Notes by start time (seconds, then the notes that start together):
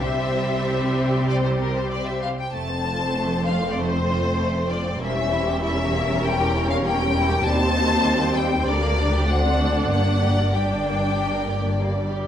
0.00 C2 C3 G3 C4 G4 C5 E5
1.29 D5
1.44 C5
1.60 A#4
1.77 C5
1.91 D5
2.07 E5
2.22 F5
2.39 G5
2.53 F1 F2 A3 C4 C5 A5
2.69 C4
2.85 F4
3.00 C4
3.16 A3
3.32 C4
3.46 F4 F5
3.64 C4
3.71 D5
3.77 A3 C5
3.94 C4
4.10 F4
4.25 C4
4.40 A3
4.56 C4
4.71 F4 D5
4.87 C4
5.00 E1 E2 G3 A#3 C#4 E5
5.16 C#4
5.32 E4
5.47 G4
5.62 E4 A#4 E5
5.76 C#4
5.92 A#3
6.08 C#4
6.23 E4 G5
6.39 G4
6.54 E4
6.70 C#4 F5
6.85 A#3 G5
7.00 C#4
7.16 E4
7.30 G4
7.45 D#2 G3 C4 C5 A5
7.61 C4
7.76 D#4
7.91 G4
8.06 D#4
8.21 C4
8.37 G3 G5
8.52 C4
8.67 D2 G3 D4 A#4 D5
8.82 A#3
8.98 D4
9.13 G4
9.28 C4 D5 F#5
9.44 D4
9.59 F#4
9.74 A4
9.90 G1 G2 A#3 F#5
10.07 D4
10.23 G4
10.38 A#4
10.54 D4 G4 G5
10.71 D4
10.86 A#3
11.01 D4
11.17 G4
11.33 A#4
11.48 A#3 G4
11.65 D4
11.80 G3 A#3
11.96 D4
12.11 G4